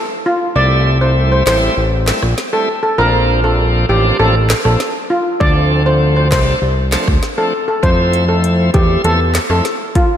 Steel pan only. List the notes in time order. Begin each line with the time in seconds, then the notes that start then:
0.26 F4
0.56 D5
1.01 C5
1.32 C5
1.47 C5
2.53 A4
2.83 A4
2.98 A#4
3.44 A4
3.89 G4
4.19 A4
4.65 A4
5.10 F4
5.40 D5
5.86 C5
6.16 C5
6.32 C5
7.38 A4
7.68 A4
7.83 C5
8.28 A4
8.74 G4
9.05 A4
9.50 A4
9.95 F4